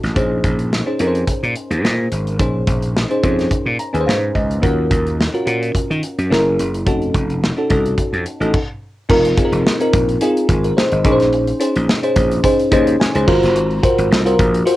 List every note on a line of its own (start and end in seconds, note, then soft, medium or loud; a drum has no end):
0.00 0.14 A1 medium
0.00 0.15 C#4 medium
0.00 0.16 D#4 medium
0.00 0.18 F#4 medium
0.00 0.18 A4 medium
0.00 closed hi-hat soft
0.04 snare soft
0.15 0.39 A#1 medium
0.15 0.82 C#4 medium
0.15 0.82 D#4 medium
0.15 0.82 G#4 medium
0.15 0.83 C5 medium
0.15 kick medium
0.15 closed hi-hat medium
0.44 0.80 A#1 medium
0.44 kick medium
0.44 closed hi-hat medium
0.59 closed hi-hat soft
0.73 snare loud
0.86 0.98 C#4 medium
0.86 0.99 D#4 medium
0.86 0.99 G#4 medium
0.86 0.99 C5 medium
0.99 1.23 F2 medium
0.99 2.05 C#4 medium
0.99 2.05 D#4 medium
0.99 2.06 G#4 medium
0.99 1.07 A#4 medium
0.99 closed hi-hat medium
1.07 2.09 C5 medium
1.15 closed hi-hat soft
1.27 kick medium
1.27 closed hi-hat medium
1.43 1.54 A#2 medium
1.43 closed hi-hat soft
1.56 closed hi-hat medium
1.71 1.84 D#2 medium
1.71 closed hi-hat soft
1.84 2.07 A#2 medium
1.84 snare medium
2.12 2.40 G#1 medium
2.12 closed hi-hat medium
2.27 closed hi-hat soft
2.39 2.63 A#1 medium
2.39 3.06 C#4 medium
2.39 3.06 D#4 medium
2.39 3.06 G#4 medium
2.39 3.07 C5 medium
2.39 kick medium
2.39 closed hi-hat medium
2.67 3.03 A#1 medium
2.67 kick medium
2.67 closed hi-hat medium
2.83 closed hi-hat soft
2.97 snare loud
3.09 3.22 C#4 medium
3.09 3.22 D#4 medium
3.09 3.23 G#4 medium
3.09 3.23 C5 medium
3.09 closed hi-hat soft
3.23 3.47 F2 medium
3.23 3.90 C#4 medium
3.23 3.90 D#4 medium
3.23 3.90 G#4 medium
3.23 3.90 C5 medium
3.23 kick medium
3.23 closed hi-hat medium
3.39 snare soft
3.39 closed hi-hat soft
3.51 kick medium
3.51 closed hi-hat medium
3.66 3.77 A#2 medium
3.79 3.93 A#5 medium
3.79 closed hi-hat medium
3.93 4.05 D#2 medium
3.93 4.59 C#4 medium
3.93 4.59 D#4 medium
3.93 4.59 G#4 medium
3.93 4.00 B4 medium
3.93 4.06 G#5 medium
3.93 closed hi-hat soft
4.01 4.62 C5 medium
4.07 4.31 G#2 medium
4.07 4.33 F5 medium
4.07 snare loud
4.35 4.58 C#2 medium
4.35 4.61 D#5 medium
4.35 kick medium
4.35 closed hi-hat medium
4.51 closed hi-hat soft
4.62 4.87 D#2 medium
4.62 5.29 C#4 medium
4.62 5.29 F4 medium
4.62 5.29 F#4 medium
4.62 5.30 A#4 medium
4.62 kick medium
4.62 closed hi-hat medium
4.91 5.27 D#2 medium
4.91 kick medium
4.91 closed hi-hat medium
5.07 closed hi-hat soft
5.21 snare loud
5.33 5.44 C#4 medium
5.33 5.45 F4 medium
5.33 5.45 F#4 medium
5.33 5.46 A#4 medium
5.33 closed hi-hat soft
5.45 5.70 A#2 medium
5.45 6.29 C#4 medium
5.45 6.30 F4 medium
5.45 6.31 F#4 medium
5.45 6.30 A#4 medium
5.45 closed hi-hat medium
5.63 closed hi-hat soft
5.75 kick medium
5.75 closed hi-hat medium
5.90 6.01 D#3 medium
5.90 closed hi-hat soft
6.03 closed hi-hat medium
6.18 6.29 F#2 medium
6.18 closed hi-hat soft
6.30 6.54 F#1 medium
6.30 6.83 C#4 medium
6.30 6.83 E4 medium
6.30 6.84 G#4 medium
6.30 6.84 A#4 medium
6.30 snare loud
6.59 6.87 F#1 medium
6.59 closed hi-hat medium
6.74 closed hi-hat soft
6.86 7.10 F1 medium
6.86 7.53 C#4 medium
6.86 7.53 D#4 medium
6.86 7.53 F#4 medium
6.86 7.53 A4 medium
6.86 kick medium
6.86 closed hi-hat medium
7.02 closed hi-hat soft
7.14 7.50 F1 medium
7.14 kick medium
7.14 closed hi-hat medium
7.30 closed hi-hat soft
7.44 snare loud
7.56 7.68 C#4 medium
7.56 7.68 D#4 medium
7.56 7.69 F#4 medium
7.56 7.70 A4 medium
7.69 7.94 C2 medium
7.69 8.36 C#4 medium
7.69 8.36 D#4 medium
7.69 8.37 F#4 medium
7.69 8.37 A4 medium
7.69 kick medium
7.69 closed hi-hat medium
7.86 closed hi-hat soft
7.98 kick medium
7.98 closed hi-hat medium
8.13 8.24 F2 medium
8.13 closed hi-hat soft
8.26 closed hi-hat medium
8.40 8.51 A1 medium
8.40 8.54 C#4 medium
8.40 8.54 D#4 medium
8.40 8.54 F#4 medium
8.40 8.54 A4 medium
8.40 closed hi-hat soft
8.54 kick loud
8.54 crash medium
9.09 9.33 F1 medium
9.09 9.36 C4 medium
9.09 9.36 D#4 medium
9.09 9.36 F4 medium
9.09 9.36 A#4 medium
9.09 kick medium
9.09 crash medium
9.25 closed hi-hat medium
9.37 9.78 C4 medium
9.37 9.78 D#4 medium
9.37 9.78 F4 medium
9.37 9.45 G#4 medium
9.37 kick loud
9.37 closed hi-hat medium
9.45 9.80 A#4 medium
9.52 9.63 F1 medium
9.52 closed hi-hat soft
9.67 snare loud
9.80 10.19 C4 medium
9.80 10.19 D#4 medium
9.80 10.19 F4 medium
9.80 10.19 A#4 medium
9.80 closed hi-hat medium
9.93 10.17 A#1 medium
9.93 kick medium
9.93 closed hi-hat medium
10.09 closed hi-hat medium
10.21 10.48 C4 medium
10.21 10.48 D#4 medium
10.21 10.48 F4 medium
10.21 10.48 G#4 medium
10.21 closed hi-hat loud
10.37 closed hi-hat soft
10.49 10.72 G#1 medium
10.49 10.64 C4 medium
10.49 10.63 G#4 medium
10.49 kick medium
10.49 closed hi-hat medium
10.64 10.76 A#4 medium
10.64 closed hi-hat medium
10.77 10.92 D#4 medium
10.77 10.91 C5 medium
10.77 snare loud
10.92 11.05 G#1 medium
10.92 11.18 D#5 medium
10.92 closed hi-hat medium
11.04 11.51 A#1 medium
11.04 11.57 C#4 medium
11.04 11.57 D#4 medium
11.04 11.58 G#4 medium
11.04 11.12 A#4 medium
11.04 kick loud
11.04 closed hi-hat medium
11.12 11.60 C5 medium
11.20 snare soft
11.20 closed hi-hat soft
11.33 closed hi-hat medium
11.47 closed hi-hat soft
11.60 12.00 C#4 medium
11.60 12.00 D#4 medium
11.60 12.01 G#4 medium
11.60 12.01 C5 medium
11.60 closed hi-hat medium
11.76 11.87 A#1 loud
11.76 closed hi-hat soft
11.89 snare loud
12.03 12.41 C#4 medium
12.03 12.42 D#4 medium
12.03 12.42 G#4 medium
12.03 12.42 C5 medium
12.03 closed hi-hat medium
12.16 12.39 A#1 medium
12.16 kick loud
12.16 closed hi-hat medium
12.31 closed hi-hat medium
12.43 12.70 C#4 medium
12.43 12.70 D#4 medium
12.43 12.70 G#4 medium
12.43 12.71 C5 loud
12.43 kick medium
12.43 closed hi-hat loud
12.59 closed hi-hat medium
12.71 12.95 D#2 medium
12.71 13.12 C#4 medium
12.71 13.12 D#4 medium
12.71 13.12 G#4 medium
12.71 13.12 C5 loud
12.71 12.98 D#5 medium
12.71 kick medium
12.71 closed hi-hat medium
12.87 closed hi-hat medium
13.00 13.26 G#5 medium
13.00 snare loud
13.14 13.26 C#2 medium
13.14 13.27 C#4 medium
13.14 13.28 D#4 medium
13.14 13.28 G#4 medium
13.14 13.27 C5 medium
13.14 closed hi-hat medium
13.27 13.40 G#1 medium
13.27 13.80 F4 medium
13.27 13.80 F#4 medium
13.27 13.80 A#4 medium
13.27 13.80 C5 medium
13.27 13.53 A#5 medium
13.27 kick loud
13.27 crash medium
13.43 13.55 F#1 medium
13.43 snare soft
13.43 closed hi-hat soft
13.55 13.78 G#1 medium
13.55 closed hi-hat medium
13.71 closed hi-hat medium
13.83 14.23 F4 medium
13.83 14.23 F#4 medium
13.83 14.23 A#4 medium
13.83 14.24 C5 medium
13.83 kick loud
13.83 closed hi-hat medium
13.98 14.09 G#1 loud
13.98 closed hi-hat soft
14.11 14.34 C2 medium
14.11 snare loud
14.25 14.64 F4 medium
14.25 14.64 F#4 medium
14.25 14.64 A#4 medium
14.25 14.65 C5 medium
14.25 closed hi-hat medium
14.39 14.62 A#1 medium
14.39 kick medium
14.39 closed hi-hat medium
14.54 closed hi-hat medium
14.65 14.76 F4 medium
14.65 14.76 F#4 medium
14.65 14.76 A#4 medium
14.65 14.76 C5 medium
14.65 closed hi-hat medium